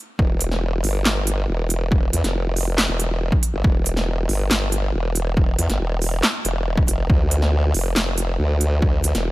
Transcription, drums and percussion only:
0, 0, Header, 1, 2, 480
1, 0, Start_track
1, 0, Tempo, 431655
1, 211, Time_signature, 4, 2, 24, 8
1, 10358, End_track
2, 0, Start_track
2, 0, Title_t, "Drums"
2, 211, Note_on_c, 9, 36, 122
2, 322, Note_off_c, 9, 36, 0
2, 451, Note_on_c, 9, 42, 87
2, 562, Note_off_c, 9, 42, 0
2, 573, Note_on_c, 9, 38, 37
2, 685, Note_off_c, 9, 38, 0
2, 932, Note_on_c, 9, 46, 94
2, 1043, Note_off_c, 9, 46, 0
2, 1172, Note_on_c, 9, 38, 123
2, 1172, Note_on_c, 9, 39, 93
2, 1283, Note_off_c, 9, 38, 0
2, 1283, Note_off_c, 9, 39, 0
2, 1412, Note_on_c, 9, 42, 84
2, 1523, Note_off_c, 9, 42, 0
2, 1891, Note_on_c, 9, 42, 84
2, 2003, Note_off_c, 9, 42, 0
2, 2131, Note_on_c, 9, 36, 126
2, 2243, Note_off_c, 9, 36, 0
2, 2372, Note_on_c, 9, 42, 81
2, 2483, Note_off_c, 9, 42, 0
2, 2494, Note_on_c, 9, 38, 39
2, 2494, Note_on_c, 9, 42, 38
2, 2605, Note_off_c, 9, 38, 0
2, 2605, Note_off_c, 9, 42, 0
2, 2852, Note_on_c, 9, 46, 86
2, 2963, Note_off_c, 9, 46, 0
2, 3092, Note_on_c, 9, 38, 125
2, 3092, Note_on_c, 9, 39, 99
2, 3203, Note_off_c, 9, 38, 0
2, 3203, Note_off_c, 9, 39, 0
2, 3331, Note_on_c, 9, 42, 82
2, 3443, Note_off_c, 9, 42, 0
2, 3693, Note_on_c, 9, 36, 113
2, 3805, Note_off_c, 9, 36, 0
2, 3812, Note_on_c, 9, 42, 84
2, 3923, Note_off_c, 9, 42, 0
2, 4051, Note_on_c, 9, 36, 127
2, 4163, Note_off_c, 9, 36, 0
2, 4292, Note_on_c, 9, 42, 77
2, 4403, Note_off_c, 9, 42, 0
2, 4414, Note_on_c, 9, 38, 40
2, 4525, Note_off_c, 9, 38, 0
2, 4771, Note_on_c, 9, 46, 86
2, 4883, Note_off_c, 9, 46, 0
2, 5012, Note_on_c, 9, 38, 127
2, 5012, Note_on_c, 9, 39, 94
2, 5123, Note_off_c, 9, 38, 0
2, 5123, Note_off_c, 9, 39, 0
2, 5252, Note_on_c, 9, 42, 79
2, 5363, Note_off_c, 9, 42, 0
2, 5732, Note_on_c, 9, 42, 77
2, 5843, Note_off_c, 9, 42, 0
2, 5971, Note_on_c, 9, 36, 127
2, 6083, Note_off_c, 9, 36, 0
2, 6211, Note_on_c, 9, 42, 81
2, 6323, Note_off_c, 9, 42, 0
2, 6334, Note_on_c, 9, 38, 38
2, 6334, Note_on_c, 9, 42, 35
2, 6445, Note_off_c, 9, 38, 0
2, 6445, Note_off_c, 9, 42, 0
2, 6691, Note_on_c, 9, 46, 88
2, 6802, Note_off_c, 9, 46, 0
2, 6932, Note_on_c, 9, 38, 123
2, 6932, Note_on_c, 9, 39, 93
2, 7043, Note_off_c, 9, 38, 0
2, 7043, Note_off_c, 9, 39, 0
2, 7171, Note_on_c, 9, 42, 77
2, 7283, Note_off_c, 9, 42, 0
2, 7533, Note_on_c, 9, 36, 109
2, 7644, Note_off_c, 9, 36, 0
2, 7652, Note_on_c, 9, 42, 79
2, 7763, Note_off_c, 9, 42, 0
2, 7891, Note_on_c, 9, 36, 120
2, 8002, Note_off_c, 9, 36, 0
2, 8132, Note_on_c, 9, 42, 80
2, 8243, Note_off_c, 9, 42, 0
2, 8254, Note_on_c, 9, 38, 37
2, 8365, Note_off_c, 9, 38, 0
2, 8612, Note_on_c, 9, 46, 96
2, 8723, Note_off_c, 9, 46, 0
2, 8852, Note_on_c, 9, 38, 125
2, 8852, Note_on_c, 9, 39, 92
2, 8963, Note_off_c, 9, 38, 0
2, 8963, Note_off_c, 9, 39, 0
2, 9092, Note_on_c, 9, 42, 79
2, 9203, Note_off_c, 9, 42, 0
2, 9571, Note_on_c, 9, 42, 77
2, 9683, Note_off_c, 9, 42, 0
2, 9811, Note_on_c, 9, 36, 116
2, 9922, Note_off_c, 9, 36, 0
2, 10051, Note_on_c, 9, 42, 81
2, 10163, Note_off_c, 9, 42, 0
2, 10173, Note_on_c, 9, 38, 36
2, 10173, Note_on_c, 9, 42, 38
2, 10285, Note_off_c, 9, 38, 0
2, 10285, Note_off_c, 9, 42, 0
2, 10358, End_track
0, 0, End_of_file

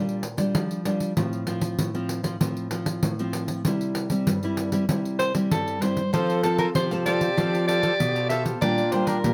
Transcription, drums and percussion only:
0, 0, Header, 1, 2, 480
1, 0, Start_track
1, 0, Key_signature, -1, "major"
1, 0, Tempo, 621118
1, 901, Time_signature, 4, 2, 24, 8
1, 7216, End_track
2, 0, Start_track
2, 0, Title_t, "Pandeiro"
2, 67, Note_on_c, 9, 54, 32
2, 144, Note_off_c, 9, 54, 0
2, 177, Note_on_c, 9, 54, 57
2, 255, Note_off_c, 9, 54, 0
2, 294, Note_on_c, 9, 54, 57
2, 372, Note_off_c, 9, 54, 0
2, 423, Note_on_c, 9, 54, 85
2, 500, Note_off_c, 9, 54, 0
2, 547, Note_on_c, 9, 54, 36
2, 624, Note_off_c, 9, 54, 0
2, 660, Note_on_c, 9, 54, 58
2, 737, Note_off_c, 9, 54, 0
2, 776, Note_on_c, 9, 54, 45
2, 853, Note_off_c, 9, 54, 0
2, 903, Note_on_c, 9, 54, 70
2, 980, Note_off_c, 9, 54, 0
2, 1027, Note_on_c, 9, 54, 29
2, 1104, Note_off_c, 9, 54, 0
2, 1134, Note_on_c, 9, 54, 57
2, 1212, Note_off_c, 9, 54, 0
2, 1248, Note_on_c, 9, 54, 53
2, 1325, Note_off_c, 9, 54, 0
2, 1380, Note_on_c, 9, 54, 70
2, 1458, Note_off_c, 9, 54, 0
2, 1504, Note_on_c, 9, 54, 28
2, 1582, Note_off_c, 9, 54, 0
2, 1616, Note_on_c, 9, 54, 61
2, 1693, Note_off_c, 9, 54, 0
2, 1732, Note_on_c, 9, 54, 56
2, 1809, Note_off_c, 9, 54, 0
2, 1861, Note_on_c, 9, 54, 74
2, 1938, Note_off_c, 9, 54, 0
2, 1983, Note_on_c, 9, 54, 31
2, 2061, Note_off_c, 9, 54, 0
2, 2093, Note_on_c, 9, 54, 62
2, 2170, Note_off_c, 9, 54, 0
2, 2211, Note_on_c, 9, 54, 61
2, 2289, Note_off_c, 9, 54, 0
2, 2339, Note_on_c, 9, 54, 80
2, 2417, Note_off_c, 9, 54, 0
2, 2467, Note_on_c, 9, 54, 36
2, 2544, Note_off_c, 9, 54, 0
2, 2575, Note_on_c, 9, 54, 63
2, 2652, Note_off_c, 9, 54, 0
2, 2690, Note_on_c, 9, 54, 51
2, 2767, Note_off_c, 9, 54, 0
2, 2819, Note_on_c, 9, 54, 72
2, 2896, Note_off_c, 9, 54, 0
2, 2944, Note_on_c, 9, 54, 31
2, 3021, Note_off_c, 9, 54, 0
2, 3052, Note_on_c, 9, 54, 61
2, 3129, Note_off_c, 9, 54, 0
2, 3167, Note_on_c, 9, 54, 53
2, 3244, Note_off_c, 9, 54, 0
2, 3299, Note_on_c, 9, 54, 72
2, 3376, Note_off_c, 9, 54, 0
2, 3421, Note_on_c, 9, 54, 29
2, 3499, Note_off_c, 9, 54, 0
2, 3533, Note_on_c, 9, 54, 61
2, 3610, Note_off_c, 9, 54, 0
2, 3648, Note_on_c, 9, 54, 53
2, 3726, Note_off_c, 9, 54, 0
2, 3778, Note_on_c, 9, 54, 74
2, 3855, Note_off_c, 9, 54, 0
2, 3905, Note_on_c, 9, 54, 31
2, 3983, Note_off_c, 9, 54, 0
2, 4015, Note_on_c, 9, 54, 59
2, 4092, Note_off_c, 9, 54, 0
2, 4132, Note_on_c, 9, 54, 57
2, 4209, Note_off_c, 9, 54, 0
2, 4262, Note_on_c, 9, 54, 75
2, 4339, Note_off_c, 9, 54, 0
2, 4386, Note_on_c, 9, 54, 35
2, 4463, Note_off_c, 9, 54, 0
2, 4496, Note_on_c, 9, 54, 61
2, 4574, Note_off_c, 9, 54, 0
2, 4612, Note_on_c, 9, 54, 46
2, 4689, Note_off_c, 9, 54, 0
2, 4742, Note_on_c, 9, 54, 70
2, 4819, Note_off_c, 9, 54, 0
2, 4867, Note_on_c, 9, 54, 30
2, 4944, Note_off_c, 9, 54, 0
2, 4973, Note_on_c, 9, 54, 64
2, 5050, Note_off_c, 9, 54, 0
2, 5088, Note_on_c, 9, 54, 51
2, 5166, Note_off_c, 9, 54, 0
2, 5217, Note_on_c, 9, 54, 79
2, 5294, Note_off_c, 9, 54, 0
2, 5342, Note_on_c, 9, 54, 30
2, 5419, Note_off_c, 9, 54, 0
2, 5456, Note_on_c, 9, 54, 58
2, 5533, Note_off_c, 9, 54, 0
2, 5572, Note_on_c, 9, 54, 51
2, 5649, Note_off_c, 9, 54, 0
2, 5704, Note_on_c, 9, 54, 71
2, 5781, Note_off_c, 9, 54, 0
2, 5831, Note_on_c, 9, 54, 34
2, 5909, Note_off_c, 9, 54, 0
2, 5940, Note_on_c, 9, 54, 58
2, 6017, Note_off_c, 9, 54, 0
2, 6052, Note_on_c, 9, 54, 55
2, 6130, Note_off_c, 9, 54, 0
2, 6184, Note_on_c, 9, 54, 69
2, 6261, Note_off_c, 9, 54, 0
2, 6305, Note_on_c, 9, 54, 32
2, 6382, Note_off_c, 9, 54, 0
2, 6415, Note_on_c, 9, 54, 56
2, 6492, Note_off_c, 9, 54, 0
2, 6535, Note_on_c, 9, 54, 53
2, 6612, Note_off_c, 9, 54, 0
2, 6661, Note_on_c, 9, 54, 72
2, 6738, Note_off_c, 9, 54, 0
2, 6784, Note_on_c, 9, 54, 31
2, 6862, Note_off_c, 9, 54, 0
2, 6894, Note_on_c, 9, 54, 60
2, 6971, Note_off_c, 9, 54, 0
2, 7010, Note_on_c, 9, 54, 53
2, 7087, Note_off_c, 9, 54, 0
2, 7142, Note_on_c, 9, 54, 66
2, 7216, Note_off_c, 9, 54, 0
2, 7216, End_track
0, 0, End_of_file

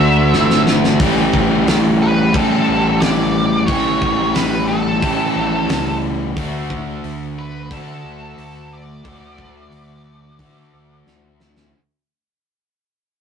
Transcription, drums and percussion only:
0, 0, Header, 1, 2, 480
1, 0, Start_track
1, 0, Tempo, 669643
1, 721, Time_signature, 4, 2, 24, 8
1, 9465, End_track
2, 0, Start_track
2, 0, Title_t, "Drums"
2, 240, Note_on_c, 9, 38, 60
2, 312, Note_off_c, 9, 38, 0
2, 361, Note_on_c, 9, 38, 63
2, 433, Note_off_c, 9, 38, 0
2, 479, Note_on_c, 9, 38, 80
2, 551, Note_off_c, 9, 38, 0
2, 603, Note_on_c, 9, 38, 73
2, 675, Note_off_c, 9, 38, 0
2, 714, Note_on_c, 9, 46, 58
2, 716, Note_on_c, 9, 36, 109
2, 786, Note_off_c, 9, 46, 0
2, 788, Note_off_c, 9, 36, 0
2, 957, Note_on_c, 9, 36, 82
2, 1028, Note_off_c, 9, 36, 0
2, 1199, Note_on_c, 9, 46, 52
2, 1206, Note_on_c, 9, 38, 96
2, 1271, Note_off_c, 9, 46, 0
2, 1278, Note_off_c, 9, 38, 0
2, 1679, Note_on_c, 9, 36, 107
2, 1681, Note_on_c, 9, 46, 46
2, 1751, Note_off_c, 9, 36, 0
2, 1752, Note_off_c, 9, 46, 0
2, 2158, Note_on_c, 9, 46, 49
2, 2165, Note_on_c, 9, 38, 113
2, 2230, Note_off_c, 9, 46, 0
2, 2237, Note_off_c, 9, 38, 0
2, 2638, Note_on_c, 9, 46, 47
2, 2639, Note_on_c, 9, 36, 108
2, 2710, Note_off_c, 9, 46, 0
2, 2711, Note_off_c, 9, 36, 0
2, 2880, Note_on_c, 9, 36, 80
2, 2952, Note_off_c, 9, 36, 0
2, 3118, Note_on_c, 9, 46, 51
2, 3124, Note_on_c, 9, 38, 105
2, 3189, Note_off_c, 9, 46, 0
2, 3196, Note_off_c, 9, 38, 0
2, 3602, Note_on_c, 9, 36, 98
2, 3602, Note_on_c, 9, 46, 53
2, 3674, Note_off_c, 9, 36, 0
2, 3674, Note_off_c, 9, 46, 0
2, 4080, Note_on_c, 9, 46, 55
2, 4086, Note_on_c, 9, 38, 110
2, 4151, Note_off_c, 9, 46, 0
2, 4158, Note_off_c, 9, 38, 0
2, 4563, Note_on_c, 9, 46, 54
2, 4564, Note_on_c, 9, 36, 104
2, 4635, Note_off_c, 9, 46, 0
2, 4636, Note_off_c, 9, 36, 0
2, 4804, Note_on_c, 9, 36, 85
2, 4876, Note_off_c, 9, 36, 0
2, 5047, Note_on_c, 9, 46, 55
2, 5118, Note_off_c, 9, 46, 0
2, 5526, Note_on_c, 9, 36, 104
2, 5528, Note_on_c, 9, 46, 49
2, 5597, Note_off_c, 9, 36, 0
2, 5600, Note_off_c, 9, 46, 0
2, 6008, Note_on_c, 9, 46, 53
2, 6080, Note_off_c, 9, 46, 0
2, 6486, Note_on_c, 9, 46, 46
2, 6487, Note_on_c, 9, 36, 102
2, 6558, Note_off_c, 9, 36, 0
2, 6558, Note_off_c, 9, 46, 0
2, 6726, Note_on_c, 9, 36, 80
2, 6798, Note_off_c, 9, 36, 0
2, 6967, Note_on_c, 9, 46, 46
2, 7039, Note_off_c, 9, 46, 0
2, 7449, Note_on_c, 9, 36, 97
2, 7451, Note_on_c, 9, 46, 47
2, 7520, Note_off_c, 9, 36, 0
2, 7522, Note_off_c, 9, 46, 0
2, 7934, Note_on_c, 9, 38, 61
2, 8006, Note_off_c, 9, 38, 0
2, 8173, Note_on_c, 9, 38, 71
2, 8245, Note_off_c, 9, 38, 0
2, 8289, Note_on_c, 9, 38, 77
2, 8361, Note_off_c, 9, 38, 0
2, 9465, End_track
0, 0, End_of_file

